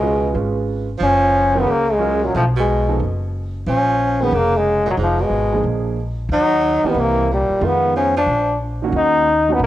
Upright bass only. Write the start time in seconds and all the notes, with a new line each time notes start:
Already playing: C#2
0.35 G#1
1.01 F#1
1.67 C#2
2.34 B1
3.00 F#1
3.66 A#1
4.32 F1
4.97 F1
5.30 G#1
5.64 A#1
6.29 D#2
6.83 muted upright bass stroke
6.94 C2
7.49 muted upright bass stroke
7.61 F2
8.26 A#1
8.92 D#2
9.59 A#1